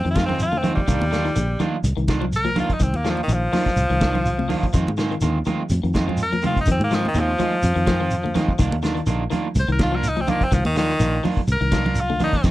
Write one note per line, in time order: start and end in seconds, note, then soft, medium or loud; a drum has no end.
0.05 0.71 F2 medium
0.05 0.13 D#3 medium
0.05 closed hi-hat soft
0.10 0.25 F4 medium
0.15 0.28 D#3 medium
0.15 0.26 F3 medium
0.15 0.28 G#3 medium
0.15 0.28 C4 medium
0.15 0.27 F4 medium
0.15 kick medium
0.15 snare medium
0.15 closed hi-hat medium
0.15 high conga medium
0.15 shekere soft
0.26 0.48 D#3 medium
0.26 0.43 G#3 soft
0.26 0.40 C4 medium
0.26 0.42 C4 soft
0.26 0.42 F4 medium
0.26 low conga medium
0.30 snare soft
0.39 0.59 F4 loud
0.39 closed hi-hat medium
0.39 shekere medium
0.52 0.61 D3 medium
0.52 high conga medium
0.58 0.73 C4 medium
0.63 0.79 D#3 medium
0.63 0.82 D#3 medium
0.63 0.79 G#3 medium
0.63 0.79 C4 medium
0.63 0.79 F4 medium
0.63 closed hi-hat medium
0.63 low conga medium
0.63 shekere soft
0.75 1.67 G3 loud
0.75 kick medium
0.87 0.98 C2 loud
0.87 1.03 D#3 medium
0.87 1.07 D#3 medium
0.87 1.03 A#3 medium
0.87 1.03 D4 medium
0.87 1.03 F4 medium
0.87 kick medium
0.87 closed hi-hat medium
0.87 shekere medium
1.01 1.29 D#2 medium
1.01 closed hi-hat soft
1.01 high conga medium
1.11 1.22 D3 medium
1.11 1.27 D#3 medium
1.11 1.27 A#3 medium
1.11 1.28 D4 medium
1.11 1.28 F4 medium
1.11 snare medium
1.11 closed hi-hat medium
1.11 shekere soft
1.25 1.34 D#3 medium
1.25 snare soft
1.25 closed hi-hat soft
1.36 1.55 A#1 loud
1.36 1.55 D3 medium
1.36 closed hi-hat medium
1.36 shekere medium
1.60 1.75 D#3 medium
1.60 1.79 D#3 medium
1.60 1.76 A#3 medium
1.60 1.76 D4 medium
1.60 1.76 F4 medium
1.60 closed hi-hat medium
1.60 high conga medium
1.60 low conga medium
1.60 shekere soft
1.84 1.94 C2 loud
1.84 closed hi-hat medium
1.84 shekere loud
1.97 2.63 C2 medium
1.97 2.16 D#3 medium
1.97 closed hi-hat soft
2.08 2.24 D#3 medium
2.08 2.24 A#3 medium
2.08 2.24 D4 medium
2.08 2.25 F4 medium
2.08 kick medium
2.08 snare medium
2.08 closed hi-hat soft
2.08 high conga medium
2.08 shekere soft
2.21 2.40 F3 medium
2.21 low conga medium
2.32 2.58 A#4 loud
2.32 closed hi-hat medium
2.32 shekere medium
2.45 2.54 F3 medium
2.45 closed hi-hat soft
2.45 high conga medium
2.56 2.76 D3 medium
2.56 2.72 D#3 medium
2.56 2.72 A#3 medium
2.56 2.72 D4 medium
2.56 2.72 F4 medium
2.56 2.74 F4 medium
2.56 closed hi-hat medium
2.56 high conga medium
2.56 low conga medium
2.56 shekere soft
2.70 2.84 D#4 medium
2.70 kick medium
2.70 closed hi-hat soft
2.80 2.91 C2 loud
2.80 3.00 D#3 medium
2.80 2.98 C4 medium
2.80 kick medium
2.80 closed hi-hat medium
2.80 shekere medium
2.93 3.21 D#2 medium
2.93 3.11 A#3 medium
2.93 closed hi-hat soft
2.93 high conga medium
3.04 3.20 D#3 medium
3.04 3.24 F3 medium
3.04 3.20 A#3 medium
3.04 3.20 D4 medium
3.04 3.21 F4 medium
3.04 snare medium
3.04 closed hi-hat medium
3.04 shekere soft
3.10 3.20 F3 medium
3.17 high conga medium
3.23 3.35 D#3 medium
3.28 3.48 A#1 loud
3.28 3.48 D#3 medium
3.28 closed hi-hat medium
3.28 shekere medium
3.33 4.72 F3 loud
3.52 3.68 D#3 medium
3.52 3.72 F3 medium
3.52 3.68 A#3 medium
3.52 3.68 D4 medium
3.52 3.69 F4 medium
3.52 snare soft
3.52 open hi-hat medium
3.52 high conga medium
3.52 low conga medium
3.52 shekere soft
3.66 kick medium
3.66 snare soft
3.76 3.87 C2 loud
3.76 closed hi-hat medium
3.76 shekere medium
3.90 4.56 C2 medium
3.90 3.99 D#3 medium
3.90 closed hi-hat soft
4.01 4.14 D#3 medium
4.01 4.13 D4 medium
4.01 muted clean electric guitar stroke medium
4.01 kick medium
4.01 snare medium
4.01 closed hi-hat medium
4.01 high conga loud
4.01 shekere soft
4.14 4.34 D#3 medium
4.14 4.28 F4 medium
4.14 muted clean electric guitar stroke medium
4.14 low conga medium
4.25 closed hi-hat medium
4.25 shekere medium
4.39 4.47 C3 medium
4.39 high conga medium
4.49 4.65 D#3 medium
4.49 4.69 D#3 medium
4.49 4.65 A#3 medium
4.49 4.65 D4 medium
4.49 4.65 F4 medium
4.49 open hi-hat medium
4.49 high conga medium
4.49 low conga medium
4.49 shekere soft
4.63 kick medium
4.73 4.85 F2 loud
4.73 4.89 D#3 medium
4.73 4.93 D#3 medium
4.73 4.89 G#3 medium
4.73 4.89 C4 medium
4.73 4.89 F4 loud
4.73 kick medium
4.73 closed hi-hat medium
4.73 shekere medium
4.87 5.15 G#2 medium
4.87 closed hi-hat soft
4.87 high conga medium
4.97 5.08 D3 medium
4.97 5.13 D#3 medium
4.97 5.13 G#3 medium
4.97 5.14 C4 medium
4.97 5.14 F4 medium
4.97 snare medium
4.97 closed hi-hat medium
4.97 shekere soft
5.11 5.20 D#3 medium
5.11 closed hi-hat soft
5.21 5.42 D#2 medium
5.21 5.42 D3 medium
5.21 5.37 D#3 medium
5.21 5.38 G#3 medium
5.21 5.38 C4 medium
5.21 5.38 F4 medium
5.21 closed hi-hat medium
5.21 shekere medium
5.45 5.62 D#3 medium
5.45 5.66 D#3 medium
5.45 5.62 G#3 medium
5.45 5.62 C4 medium
5.45 5.62 F4 medium
5.45 closed hi-hat soft
5.45 high conga medium
5.45 low conga medium
5.45 shekere soft
5.69 5.81 F2 loud
5.69 closed hi-hat medium
5.69 high conga medium
5.69 shekere medium
5.83 6.50 F2 medium
5.83 6.03 D#3 medium
5.83 closed hi-hat soft
5.93 6.08 D#3 medium
5.93 6.07 G#3 medium
5.93 6.06 C4 medium
5.93 6.06 F4 medium
5.93 kick medium
5.93 snare medium
5.93 closed hi-hat medium
5.93 high conga medium
5.93 shekere soft
6.07 6.27 F3 medium
6.07 6.22 G#3 soft
6.07 6.21 C4 soft
6.07 6.21 F4 soft
6.07 low conga medium
6.17 closed hi-hat medium
6.17 shekere medium
6.23 6.44 A#4 loud
6.33 6.41 F3 medium
6.33 closed hi-hat soft
6.33 high conga medium
6.42 6.63 C3 medium
6.42 6.58 D#3 medium
6.42 6.58 G#3 medium
6.42 6.59 C4 medium
6.42 6.59 F4 medium
6.42 closed hi-hat soft
6.42 high conga medium
6.42 low conga medium
6.42 shekere soft
6.46 6.57 F4 medium
6.57 kick medium
6.57 closed hi-hat soft
6.61 6.69 D#4 medium
6.66 6.78 F2 loud
6.66 6.87 D#3 medium
6.66 kick loud
6.66 closed hi-hat medium
6.66 shekere medium
6.71 6.82 C4 loud
6.79 7.07 G#2 medium
6.79 closed hi-hat soft
6.79 high conga medium
6.84 6.96 A#3 loud
6.90 7.06 D#3 medium
6.90 7.10 F3 medium
6.90 7.06 G#3 medium
6.90 7.07 C4 medium
6.90 7.07 F4 medium
6.90 snare medium
6.90 closed hi-hat medium
6.90 shekere soft
6.95 7.05 F3 medium
7.05 7.21 D#3 medium
7.05 high conga medium
7.14 7.34 D#2 medium
7.14 7.30 D#3 medium
7.14 7.35 D#3 medium
7.14 7.31 G#3 medium
7.14 7.31 C4 medium
7.14 7.31 F4 medium
7.14 closed hi-hat medium
7.14 shekere medium
7.19 8.58 F3 loud
7.39 7.55 D#3 medium
7.39 7.58 F3 medium
7.39 7.55 G#3 medium
7.39 7.55 F4 medium
7.39 muted clean electric guitar stroke medium
7.39 closed hi-hat medium
7.39 high conga medium
7.39 low conga medium
7.39 shekere soft
7.62 7.74 F2 loud
7.62 closed hi-hat medium
7.62 shekere medium
7.76 8.42 F2 medium
7.76 7.85 D#3 medium
7.76 closed hi-hat soft
7.86 8.00 D#3 medium
7.86 7.98 F3 medium
7.86 8.00 G#3 medium
7.86 7.99 C4 medium
7.86 7.98 F4 medium
7.86 kick medium
7.86 snare medium
7.86 closed hi-hat medium
7.86 high conga loud
7.86 shekere soft
8.00 8.20 D#3 medium
8.00 8.14 C4 medium
8.00 8.14 F4 medium
8.10 closed hi-hat medium
8.10 shekere medium
8.24 8.33 D3 medium
8.24 high conga medium
8.34 8.51 D#3 medium
8.34 8.54 D#3 medium
8.34 8.51 G#3 medium
8.34 8.51 C4 medium
8.34 8.51 F4 medium
8.34 snare soft
8.34 closed hi-hat medium
8.34 high conga medium
8.34 low conga medium
8.34 shekere soft
8.48 kick medium
8.59 8.70 C2 loud
8.59 8.78 D#3 medium
8.59 8.75 D#3 medium
8.59 8.75 A#3 medium
8.59 8.75 D4 loud
8.59 8.75 F4 medium
8.59 kick medium
8.59 closed hi-hat medium
8.59 shekere medium
8.72 9.00 D#2 medium
8.72 closed hi-hat soft
8.72 high conga medium
8.82 8.94 D3 medium
8.82 8.99 D#3 medium
8.82 8.99 D4 medium
8.82 8.99 F4 medium
8.82 muted clean electric guitar stroke medium
8.82 snare medium
8.82 closed hi-hat medium
8.82 shekere soft
8.95 9.05 D#3 medium
8.95 closed hi-hat soft
9.06 9.26 A#1 medium
9.06 9.26 D3 medium
9.06 9.23 D#3 medium
9.06 9.23 A#3 medium
9.06 9.23 D4 medium
9.06 9.23 F4 medium
9.06 closed hi-hat medium
9.06 shekere medium
9.30 9.50 D#3 medium
9.30 9.47 D#3 medium
9.30 9.47 A#3 medium
9.30 9.47 D4 medium
9.30 9.47 F4 medium
9.30 closed hi-hat medium
9.30 high conga medium
9.30 low conga medium
9.30 shekere soft
9.55 9.66 C2 loud
9.55 closed hi-hat medium
9.55 high conga medium
9.55 shekere medium
9.60 9.70 C5 loud
9.68 10.34 C2 medium
9.68 9.88 D#3 medium
9.68 9.81 A#4 medium
9.68 closed hi-hat soft
9.79 9.93 D#3 medium
9.79 9.92 A#3 medium
9.79 9.92 D4 medium
9.79 9.91 F4 medium
9.79 kick medium
9.79 snare medium
9.79 closed hi-hat medium
9.79 high conga medium
9.79 shekere soft
9.83 9.97 F4 medium
9.92 10.12 F3 medium
9.92 10.07 A#3 soft
9.92 10.07 D4 soft
9.92 10.07 F4 soft
9.92 10.10 A#4 medium
10.03 closed hi-hat medium
10.03 shekere medium
10.08 10.22 D#4 medium
10.17 10.26 F3 medium
10.17 closed hi-hat soft
10.17 high conga medium
10.21 10.31 C4 medium
10.27 10.47 D3 medium
10.27 10.43 D#3 medium
10.27 10.43 A#3 medium
10.27 10.45 A#3 loud
10.27 10.44 D4 medium
10.27 10.44 F4 medium
10.27 closed hi-hat soft
10.27 high conga medium
10.27 low conga medium
10.27 shekere soft
10.41 10.55 C4 loud
10.41 kick medium
10.41 closed hi-hat soft
10.51 10.62 C2 loud
10.51 10.71 D#3 medium
10.51 10.65 F3 medium
10.51 kick medium
10.51 snare soft
10.51 closed hi-hat medium
10.51 shekere medium
10.65 10.93 D#2 medium
10.65 10.76 D#3 loud
10.65 closed hi-hat soft
10.65 high conga medium
10.75 10.91 D#3 medium
10.75 11.24 D#3 loud
10.75 10.95 F3 medium
10.75 10.91 A#3 medium
10.75 10.92 D4 medium
10.75 10.92 F4 medium
10.75 snare medium
10.75 closed hi-hat medium
10.75 shekere soft
10.90 snare soft
10.99 11.19 A#1 loud
10.99 11.15 D#3 medium
10.99 11.19 D#3 medium
10.99 11.16 A#3 medium
10.99 11.16 D4 medium
10.99 11.16 F4 medium
10.99 closed hi-hat medium
10.99 shekere medium
11.23 11.39 D#3 medium
11.23 11.43 F3 medium
11.23 11.40 A#3 medium
11.23 11.40 D4 medium
11.23 11.40 F4 medium
11.23 open hi-hat medium
11.23 high conga medium
11.23 low conga medium
11.23 shekere soft
11.37 kick medium
11.47 11.58 C2 loud
11.47 closed hi-hat medium
11.47 shekere medium
11.52 12.02 A#4 loud
11.61 12.27 C2 medium
11.61 11.70 D#3 medium
11.61 closed hi-hat soft
11.72 11.85 D#3 medium
11.72 11.83 F3 medium
11.72 11.85 A#3 medium
11.72 11.84 D4 medium
11.72 11.83 F4 medium
11.72 kick medium
11.72 snare medium
11.72 closed hi-hat medium
11.72 high conga medium
11.72 shekere soft
11.85 11.99 A#3 soft
11.85 11.99 D4 medium
11.85 11.99 F4 medium
11.85 muted clean electric guitar stroke medium
11.85 low conga medium
11.95 closed hi-hat medium
11.95 shekere medium
12.00 12.22 F4 medium
12.10 12.18 D3 medium
12.10 high conga medium
12.19 12.35 D#3 medium
12.19 12.40 D#3 medium
12.19 12.36 A#3 medium
12.19 12.36 D4 medium
12.19 open hi-hat medium
12.19 high conga medium
12.19 low conga medium
12.19 shekere soft
12.23 12.45 D#4 medium
12.33 kick medium
12.44 12.51 F2 medium
12.44 12.51 D#3 medium
12.44 12.51 G#3 medium
12.44 12.51 C4 medium
12.44 12.51 F4 medium
12.44 kick loud
12.44 crash medium
12.44 shekere medium